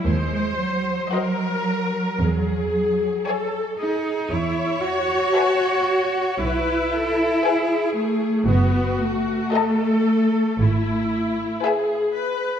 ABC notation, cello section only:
X:1
M:4/4
L:1/8
Q:1/4=57
K:E
V:1 name="Cello section"
G, _G,4- G, z D | E F3 E3 A, | B, A,4- A, z2 |]